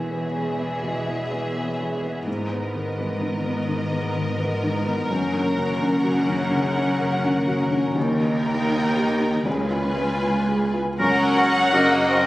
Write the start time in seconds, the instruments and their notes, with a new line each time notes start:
Already playing: double bass section E1, felt piano E2 B3 B4, cello section E2, harp E3 B3 E4 G#4, viola section B3, violin section G#4 E5
0.11 felt piano B3, harp C#4
0.35 harp B3, felt piano G#4
0.58 felt piano B3, harp E4
0.83 felt piano B2, harp B3
1.06 felt piano B3, harp E4
1.31 harp B3, felt piano B4
1.56 felt piano B3, harp C#4
1.79 harp B3, felt piano G#4
2.03 felt piano B3, harp E4
2.26 double bass section G#1, harp G#2, cello section G#2, felt piano G#2, violin section A#4 D#5
2.50 harp B3, felt piano B3
2.74 harp D#3, felt piano A#4
2.97 harp E3, felt piano B3
3.21 harp D#3, felt piano D#4
3.44 harp B3, felt piano B3
3.68 harp D#3, felt piano D#3
3.91 harp B3, felt piano B3
4.15 harp D#3, felt piano A#4
4.39 harp E3, felt piano B3
4.63 harp D#3, felt piano D#4
4.86 felt piano B3, harp B3
5.09 double bass section F#1, felt piano F#2, cello section F#2, harp F#2, viola section C#4, violin section F#5
5.33 felt piano C#4, harp C#4
5.57 harp C#3, felt piano A#4
5.81 harp D#3, felt piano C#4
6.04 harp C#3, felt piano F#4
6.28 felt piano C#4, harp C#4
6.52 felt piano C#3, harp C#3
6.75 harp C#4, felt piano C#4
6.99 harp C#3, felt piano A#4
7.23 harp D#3, felt piano C#4
7.47 harp C#3, felt piano F#4
7.71 felt piano C#4, harp C#4
7.95 felt piano D#2, double bass section D#2, cello section D#2, harp D#3, viola section D#4, violin section A#4 G5
8.21 felt piano D#4, harp D#4
8.45 harp A#3, felt piano A#4
8.70 harp B3, felt piano D#4
8.96 harp A#3, felt piano G4
9.20 felt piano D#4, harp D#4
9.45 double bass section C#2, cello section C#2, felt piano C#2, harp C#3, viola section F4, violin section B4 G#5
9.70 felt piano F4, harp F4
9.96 harp G#3, felt piano B4
10.22 harp B3, felt piano F4
10.48 harp G#3, felt piano G#4
10.74 felt piano F4, harp F4
10.99 cello section F#2, felt piano F#2, harp F#2, french horn section C#3 A#4, viola section F#3, violin section C#4 A#4 F#5, oboe A#4, flute section C#6
11.36 harp A#3, oboe A#4, violin section C#5, flute section C#6
11.72 felt piano C#3 F#4 A#4, violin section A#3 D#5, harp A#4, oboe A#4, flute section C#6
12.08 violin section C4, harp F#4, oboe A#4, flute section C#6